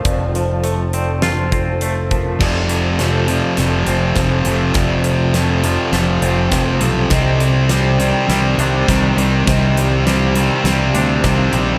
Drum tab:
CC |--------|x-------|--------|--------|
HH |xxxxxxxx|-xxxxxxx|xxxxxxxx|xxxxxxxx|
SD |----o---|o-o-o-o-|o-o-o-o-|o-o-o-o-|
BD |o----o-o|o-----o-|o-----o-|o-----o-|

CC |--------|
HH |xxxxxxxx|
SD |o-o-o-o-|
BD |o-----o-|